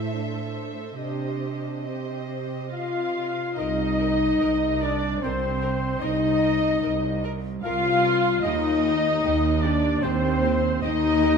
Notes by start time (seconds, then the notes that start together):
Already playing: A2 E4 A4 C5 E5
0.13 D4
0.97 C3 D4 G4 C5 D#5
1.84 C4 G4 C5 D#5
2.72 F4 F5
3.58 C2 D#4 A#4 D#5
4.00 A#4
4.41 C2 A#4
4.81 D4 A#4 D5
5.22 C2 C4 A#4 C5
5.62 A#4
6.02 C2 D#4 A#4 D#5
6.43 A#4
6.83 C2 A#4
7.24 A#4
7.63 C2 F4 A#4 F5
8.05 A#4
8.43 D#2 D#4 G4 D#5
8.86 G4
9.25 D#2 G4
9.62 D4 G4 D5
10.02 D#2 C4 G4 C5
10.44 G4
10.82 D#2 D#4 G4 D#5
11.23 G4